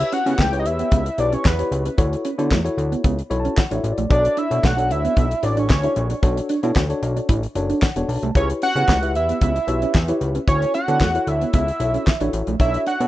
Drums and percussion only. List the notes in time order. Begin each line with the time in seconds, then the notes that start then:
0.00 closed hi-hat
0.12 closed hi-hat
0.26 closed hi-hat
0.39 kick, snare, clap
0.53 closed hi-hat
0.66 closed hi-hat
0.79 closed hi-hat
0.91 kick, closed hi-hat
1.06 closed hi-hat
1.18 closed hi-hat
1.33 closed hi-hat
1.45 kick, snare, clap
1.59 closed hi-hat
1.72 closed hi-hat
1.85 closed hi-hat
1.98 kick, closed hi-hat
2.13 closed hi-hat
2.25 closed hi-hat
2.39 closed hi-hat
2.51 kick, snare, clap
2.66 closed hi-hat
2.78 closed hi-hat
2.92 closed hi-hat
3.04 kick, closed hi-hat
3.19 closed hi-hat
3.31 closed hi-hat
3.45 closed hi-hat
3.57 kick, snare, clap
3.71 closed hi-hat
3.84 closed hi-hat
3.98 closed hi-hat
4.11 kick, closed hi-hat
4.25 closed hi-hat
4.37 closed hi-hat
4.51 closed hi-hat
4.64 kick, snare, clap
4.78 closed hi-hat
4.91 closed hi-hat
5.05 closed hi-hat
5.17 kick, closed hi-hat
5.31 closed hi-hat
5.43 closed hi-hat
5.57 closed hi-hat
5.70 kick, snare, clap
5.83 closed hi-hat
5.96 closed hi-hat
6.10 closed hi-hat
6.23 kick, closed hi-hat
6.37 closed hi-hat
6.49 closed hi-hat
6.63 closed hi-hat
6.76 kick, snare, clap
6.90 closed hi-hat
7.03 closed hi-hat
7.17 closed hi-hat
7.29 kick, closed hi-hat
7.43 closed hi-hat
7.55 closed hi-hat
7.70 closed hi-hat
7.82 kick, snare, clap
7.96 closed hi-hat
8.09 open hi-hat
8.23 closed hi-hat
8.35 kick, closed hi-hat
8.50 closed hi-hat
8.62 closed hi-hat
8.76 closed hi-hat
8.88 kick, snare, clap
9.03 closed hi-hat
9.15 closed hi-hat
9.29 closed hi-hat
9.41 kick, closed hi-hat
9.56 closed hi-hat
9.68 closed hi-hat
9.82 closed hi-hat
9.94 kick, snare, clap
10.08 closed hi-hat
10.21 closed hi-hat
10.35 closed hi-hat
10.48 kick, closed hi-hat
10.62 closed hi-hat
10.74 closed hi-hat
10.88 closed hi-hat
11.01 kick, snare, clap
11.15 closed hi-hat
11.27 closed hi-hat
11.41 closed hi-hat
11.53 kick, closed hi-hat
11.68 closed hi-hat
11.80 closed hi-hat
11.94 closed hi-hat
12.07 kick, snare, clap
12.20 closed hi-hat
12.33 closed hi-hat
12.47 closed hi-hat
12.60 kick, closed hi-hat
12.74 closed hi-hat
12.86 closed hi-hat
13.01 closed hi-hat